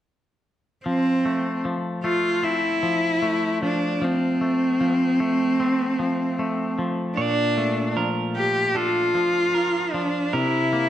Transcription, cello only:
0, 0, Header, 1, 2, 480
1, 0, Start_track
1, 0, Key_signature, -1, "major"
1, 0, Tempo, 789474
1, 522, Time_signature, 4, 2, 24, 8
1, 6622, End_track
2, 0, Start_track
2, 0, Title_t, "Cello"
2, 0, Program_c, 0, 42
2, 520, Note_on_c, 0, 60, 57
2, 978, Note_off_c, 0, 60, 0
2, 1243, Note_on_c, 0, 65, 53
2, 1483, Note_on_c, 0, 64, 58
2, 1492, Note_off_c, 0, 65, 0
2, 2204, Note_off_c, 0, 64, 0
2, 2211, Note_on_c, 0, 62, 46
2, 2457, Note_on_c, 0, 60, 51
2, 2466, Note_off_c, 0, 62, 0
2, 4130, Note_off_c, 0, 60, 0
2, 4362, Note_on_c, 0, 62, 67
2, 4817, Note_off_c, 0, 62, 0
2, 5086, Note_on_c, 0, 67, 60
2, 5325, Note_on_c, 0, 65, 62
2, 5334, Note_off_c, 0, 67, 0
2, 6041, Note_on_c, 0, 62, 49
2, 6050, Note_off_c, 0, 65, 0
2, 6283, Note_on_c, 0, 64, 65
2, 6293, Note_off_c, 0, 62, 0
2, 6622, Note_off_c, 0, 64, 0
2, 6622, End_track
0, 0, End_of_file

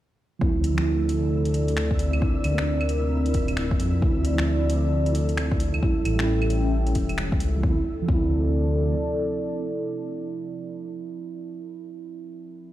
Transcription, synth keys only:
0, 0, Header, 1, 2, 480
1, 0, Start_track
1, 0, Key_signature, -1, "minor"
1, 0, Tempo, 451128
1, 439, Time_signature, 4, 2, 24, 8
1, 13543, End_track
2, 0, Start_track
2, 0, Title_t, "Synth keys"
2, 0, Program_c, 0, 88
2, 417, Note_on_c, 0, 53, 67
2, 437, Note_on_c, 0, 60, 63
2, 461, Note_on_c, 0, 64, 79
2, 647, Control_c, 0, 64, 127
2, 776, Note_off_c, 0, 53, 0
2, 789, Note_on_c, 0, 53, 79
2, 792, Note_off_c, 0, 60, 0
2, 804, Note_off_c, 0, 64, 0
2, 830, Note_on_c, 0, 60, 70
2, 874, Note_on_c, 0, 64, 87
2, 2318, Note_off_c, 0, 53, 0
2, 2338, Note_off_c, 0, 60, 0
2, 2340, Note_on_c, 0, 58, 68
2, 2359, Note_on_c, 0, 60, 65
2, 2360, Note_off_c, 0, 64, 0
2, 2372, Control_c, 0, 64, 0
2, 2380, Note_on_c, 0, 62, 78
2, 2574, Control_c, 0, 64, 127
2, 2693, Note_off_c, 0, 58, 0
2, 2706, Note_on_c, 0, 58, 84
2, 2713, Note_off_c, 0, 60, 0
2, 2724, Note_off_c, 0, 62, 0
2, 2747, Note_on_c, 0, 60, 74
2, 2790, Note_on_c, 0, 62, 87
2, 4236, Note_off_c, 0, 58, 0
2, 4257, Note_off_c, 0, 60, 0
2, 4259, Note_on_c, 0, 53, 75
2, 4279, Note_off_c, 0, 62, 0
2, 4280, Note_on_c, 0, 60, 68
2, 4292, Control_c, 0, 64, 0
2, 4301, Note_on_c, 0, 64, 80
2, 4477, Control_c, 0, 64, 127
2, 4609, Note_off_c, 0, 53, 0
2, 4622, Note_on_c, 0, 53, 84
2, 4633, Note_off_c, 0, 60, 0
2, 4644, Note_off_c, 0, 64, 0
2, 4663, Note_on_c, 0, 60, 74
2, 4707, Note_on_c, 0, 64, 91
2, 6154, Note_off_c, 0, 53, 0
2, 6175, Note_off_c, 0, 60, 0
2, 6176, Note_on_c, 0, 55, 70
2, 6197, Note_off_c, 0, 64, 0
2, 6197, Note_on_c, 0, 61, 72
2, 6216, Control_c, 0, 64, 0
2, 6219, Note_on_c, 0, 64, 86
2, 6420, Control_c, 0, 64, 127
2, 6533, Note_off_c, 0, 55, 0
2, 6546, Note_on_c, 0, 55, 88
2, 6552, Note_off_c, 0, 61, 0
2, 6563, Note_off_c, 0, 64, 0
2, 6590, Note_on_c, 0, 61, 77
2, 6631, Note_on_c, 0, 64, 96
2, 8055, Note_on_c, 0, 53, 77
2, 8076, Note_off_c, 0, 55, 0
2, 8098, Note_off_c, 0, 61, 0
2, 8119, Note_off_c, 0, 64, 0
2, 8120, Note_on_c, 0, 60, 71
2, 8135, Control_c, 0, 64, 0
2, 8185, Note_on_c, 0, 64, 84
2, 8241, Note_off_c, 0, 53, 0
2, 8276, Note_off_c, 0, 60, 0
2, 8310, Note_off_c, 0, 64, 0
2, 8342, Control_c, 0, 64, 127
2, 8534, Note_on_c, 0, 53, 79
2, 8598, Note_on_c, 0, 60, 78
2, 8660, Note_on_c, 0, 64, 90
2, 12334, Note_off_c, 0, 53, 0
2, 12398, Note_off_c, 0, 60, 0
2, 12460, Note_off_c, 0, 64, 0
2, 13543, End_track
0, 0, End_of_file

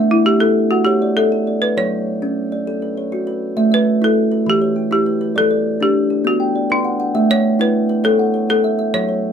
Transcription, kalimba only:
0, 0, Header, 1, 2, 480
1, 0, Start_track
1, 0, Tempo, 298954
1, 2842, Time_signature, 12, 3, 24, 8
1, 14971, End_track
2, 0, Start_track
2, 0, Title_t, "Kalimba"
2, 0, Program_c, 0, 108
2, 0, Note_on_c, 0, 57, 89
2, 0, Note_on_c, 0, 76, 75
2, 433, Note_off_c, 0, 57, 0
2, 671, Note_on_c, 0, 64, 82
2, 674, Note_off_c, 0, 76, 0
2, 1152, Note_on_c, 0, 78, 64
2, 1155, Note_off_c, 0, 64, 0
2, 1388, Note_on_c, 0, 73, 83
2, 1637, Note_on_c, 0, 74, 68
2, 1875, Note_off_c, 0, 73, 0
2, 1876, Note_off_c, 0, 78, 0
2, 1885, Note_on_c, 0, 76, 58
2, 2120, Note_on_c, 0, 69, 81
2, 2345, Note_off_c, 0, 74, 0
2, 2364, Note_on_c, 0, 74, 61
2, 2601, Note_off_c, 0, 69, 0
2, 2604, Note_off_c, 0, 76, 0
2, 2844, Note_on_c, 0, 73, 73
2, 2846, Note_on_c, 0, 54, 89
2, 3084, Note_off_c, 0, 74, 0
2, 3325, Note_off_c, 0, 54, 0
2, 3565, Note_off_c, 0, 73, 0
2, 3568, Note_on_c, 0, 61, 76
2, 4047, Note_off_c, 0, 61, 0
2, 4049, Note_on_c, 0, 74, 63
2, 4293, Note_on_c, 0, 69, 78
2, 4532, Note_on_c, 0, 71, 57
2, 4768, Note_off_c, 0, 74, 0
2, 4770, Note_off_c, 0, 69, 0
2, 4776, Note_on_c, 0, 73, 62
2, 5014, Note_on_c, 0, 66, 76
2, 5232, Note_off_c, 0, 71, 0
2, 5251, Note_on_c, 0, 71, 62
2, 5491, Note_off_c, 0, 66, 0
2, 5492, Note_off_c, 0, 73, 0
2, 5727, Note_on_c, 0, 57, 91
2, 5729, Note_on_c, 0, 76, 75
2, 5947, Note_off_c, 0, 76, 0
2, 5966, Note_on_c, 0, 76, 64
2, 5970, Note_off_c, 0, 71, 0
2, 6208, Note_off_c, 0, 57, 0
2, 6449, Note_on_c, 0, 64, 79
2, 6687, Note_off_c, 0, 76, 0
2, 6928, Note_on_c, 0, 71, 68
2, 6929, Note_off_c, 0, 64, 0
2, 7168, Note_on_c, 0, 52, 86
2, 7408, Note_off_c, 0, 71, 0
2, 7412, Note_on_c, 0, 73, 64
2, 7642, Note_on_c, 0, 67, 61
2, 7648, Note_off_c, 0, 52, 0
2, 7883, Note_on_c, 0, 64, 81
2, 8128, Note_on_c, 0, 71, 72
2, 8130, Note_off_c, 0, 73, 0
2, 8345, Note_off_c, 0, 71, 0
2, 8365, Note_off_c, 0, 64, 0
2, 8365, Note_off_c, 0, 67, 0
2, 8365, Note_on_c, 0, 71, 69
2, 8600, Note_on_c, 0, 74, 71
2, 8607, Note_on_c, 0, 55, 86
2, 8822, Note_off_c, 0, 74, 0
2, 8842, Note_on_c, 0, 74, 65
2, 8846, Note_off_c, 0, 71, 0
2, 9087, Note_off_c, 0, 55, 0
2, 9320, Note_on_c, 0, 62, 76
2, 9564, Note_off_c, 0, 74, 0
2, 9798, Note_on_c, 0, 69, 66
2, 9803, Note_off_c, 0, 62, 0
2, 10028, Note_on_c, 0, 59, 78
2, 10274, Note_on_c, 0, 79, 62
2, 10282, Note_off_c, 0, 69, 0
2, 10517, Note_off_c, 0, 59, 0
2, 10525, Note_on_c, 0, 74, 65
2, 10757, Note_on_c, 0, 71, 83
2, 10992, Note_on_c, 0, 78, 66
2, 10999, Note_off_c, 0, 79, 0
2, 11216, Note_off_c, 0, 78, 0
2, 11235, Note_on_c, 0, 78, 65
2, 11240, Note_off_c, 0, 71, 0
2, 11244, Note_off_c, 0, 74, 0
2, 11476, Note_on_c, 0, 57, 92
2, 11476, Note_on_c, 0, 76, 79
2, 11702, Note_off_c, 0, 76, 0
2, 11719, Note_off_c, 0, 78, 0
2, 11721, Note_on_c, 0, 76, 64
2, 11959, Note_off_c, 0, 57, 0
2, 12193, Note_on_c, 0, 64, 81
2, 12441, Note_off_c, 0, 76, 0
2, 12675, Note_on_c, 0, 71, 72
2, 12677, Note_off_c, 0, 64, 0
2, 12908, Note_on_c, 0, 73, 88
2, 13155, Note_on_c, 0, 78, 65
2, 13369, Note_off_c, 0, 73, 0
2, 13389, Note_on_c, 0, 73, 67
2, 13397, Note_off_c, 0, 71, 0
2, 13641, Note_on_c, 0, 69, 85
2, 13874, Note_on_c, 0, 76, 69
2, 13877, Note_off_c, 0, 78, 0
2, 14090, Note_off_c, 0, 76, 0
2, 14109, Note_on_c, 0, 76, 62
2, 14113, Note_off_c, 0, 73, 0
2, 14120, Note_off_c, 0, 69, 0
2, 14353, Note_on_c, 0, 73, 73
2, 14354, Note_on_c, 0, 54, 96
2, 14570, Note_off_c, 0, 73, 0
2, 14589, Note_on_c, 0, 73, 61
2, 14593, Note_off_c, 0, 76, 0
2, 14836, Note_off_c, 0, 54, 0
2, 14971, Note_off_c, 0, 73, 0
2, 14971, End_track
0, 0, End_of_file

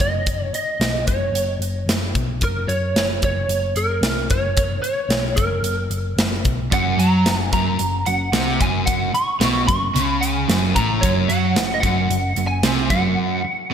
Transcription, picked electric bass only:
0, 0, Header, 1, 3, 480
1, 0, Start_track
1, 0, Key_signature, 6, "major"
1, 0, Tempo, 537634
1, 239, Time_signature, 4, 2, 24, 8
1, 12264, End_track
2, 0, Start_track
2, 0, Title_t, "Picked electric bass"
2, 0, Program_c, 0, 34
2, 0, Note_on_c, 0, 30, 87
2, 445, Note_off_c, 0, 30, 0
2, 711, Note_on_c, 0, 35, 81
2, 940, Note_off_c, 0, 35, 0
2, 961, Note_on_c, 0, 30, 77
2, 1173, Note_off_c, 0, 30, 0
2, 1178, Note_on_c, 0, 30, 83
2, 1413, Note_off_c, 0, 30, 0
2, 1421, Note_on_c, 0, 30, 71
2, 1655, Note_off_c, 0, 30, 0
2, 1662, Note_on_c, 0, 30, 75
2, 1896, Note_off_c, 0, 30, 0
2, 1920, Note_on_c, 0, 35, 82
2, 2145, Note_off_c, 0, 35, 0
2, 2161, Note_on_c, 0, 30, 84
2, 2382, Note_off_c, 0, 30, 0
2, 2387, Note_on_c, 0, 42, 90
2, 2619, Note_off_c, 0, 42, 0
2, 2626, Note_on_c, 0, 30, 68
2, 2859, Note_off_c, 0, 30, 0
2, 2878, Note_on_c, 0, 30, 93
2, 3105, Note_off_c, 0, 30, 0
2, 3111, Note_on_c, 0, 30, 75
2, 3342, Note_off_c, 0, 30, 0
2, 3354, Note_on_c, 0, 30, 69
2, 3576, Note_off_c, 0, 30, 0
2, 3582, Note_on_c, 0, 36, 86
2, 3817, Note_off_c, 0, 36, 0
2, 3839, Note_on_c, 0, 30, 79
2, 4289, Note_off_c, 0, 30, 0
2, 4542, Note_on_c, 0, 35, 78
2, 4777, Note_off_c, 0, 35, 0
2, 4803, Note_on_c, 0, 30, 74
2, 5016, Note_off_c, 0, 30, 0
2, 5021, Note_on_c, 0, 30, 83
2, 5256, Note_off_c, 0, 30, 0
2, 5269, Note_on_c, 0, 30, 72
2, 5498, Note_off_c, 0, 30, 0
2, 5503, Note_on_c, 0, 30, 72
2, 5737, Note_off_c, 0, 30, 0
2, 5754, Note_on_c, 0, 35, 81
2, 5983, Note_off_c, 0, 35, 0
2, 5996, Note_on_c, 0, 30, 88
2, 6219, Note_off_c, 0, 30, 0
2, 6225, Note_on_c, 0, 42, 88
2, 6457, Note_off_c, 0, 42, 0
2, 6477, Note_on_c, 0, 30, 68
2, 6704, Note_off_c, 0, 30, 0
2, 6719, Note_on_c, 0, 30, 86
2, 6944, Note_off_c, 0, 30, 0
2, 6956, Note_on_c, 0, 30, 71
2, 7183, Note_off_c, 0, 30, 0
2, 7201, Note_on_c, 0, 30, 73
2, 7425, Note_off_c, 0, 30, 0
2, 7431, Note_on_c, 0, 36, 88
2, 7660, Note_off_c, 0, 36, 0
2, 7681, Note_on_c, 0, 30, 86
2, 8127, Note_off_c, 0, 30, 0
2, 8393, Note_on_c, 0, 35, 80
2, 8620, Note_off_c, 0, 35, 0
2, 8642, Note_on_c, 0, 30, 75
2, 8864, Note_off_c, 0, 30, 0
2, 8882, Note_on_c, 0, 37, 84
2, 9327, Note_off_c, 0, 37, 0
2, 9363, Note_on_c, 0, 30, 82
2, 9584, Note_off_c, 0, 30, 0
2, 9605, Note_on_c, 0, 33, 83
2, 9825, Note_off_c, 0, 33, 0
2, 9845, Note_on_c, 0, 30, 90
2, 10065, Note_off_c, 0, 30, 0
2, 10073, Note_on_c, 0, 42, 90
2, 10298, Note_off_c, 0, 42, 0
2, 10312, Note_on_c, 0, 30, 66
2, 10538, Note_off_c, 0, 30, 0
2, 10564, Note_on_c, 0, 30, 88
2, 10784, Note_off_c, 0, 30, 0
2, 10796, Note_on_c, 0, 30, 72
2, 11020, Note_off_c, 0, 30, 0
2, 11032, Note_on_c, 0, 30, 74
2, 11257, Note_off_c, 0, 30, 0
2, 11275, Note_on_c, 0, 36, 85
2, 11498, Note_off_c, 0, 36, 0
2, 11518, Note_on_c, 0, 30, 86
2, 11740, Note_off_c, 0, 30, 0
2, 12264, End_track
3, 0, Start_track
3, 0, Title_t, "Muted picked electric bass strokes"
3, 472, Note_on_c, 9, 29, 37
3, 561, Note_off_c, 9, 29, 0
3, 8153, Note_on_c, 9, 29, 37
3, 8242, Note_off_c, 9, 29, 0
3, 12264, End_track
0, 0, End_of_file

